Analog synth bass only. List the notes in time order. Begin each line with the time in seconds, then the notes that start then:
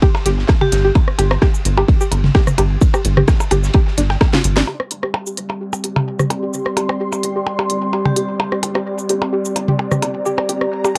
0.26 G1
0.72 G1
1.19 G1
1.65 G1
2.12 G1
2.58 G1
3.05 G1
3.51 G1
3.98 G1
4.44 G1
4.91 G1
5.37 G1
5.84 G1
6.30 G1
6.77 G1
7.23 G1
7.70 G1
8.16 G1
8.63 G1
9.09 G1
9.56 G1
10.02 G1
10.49 G1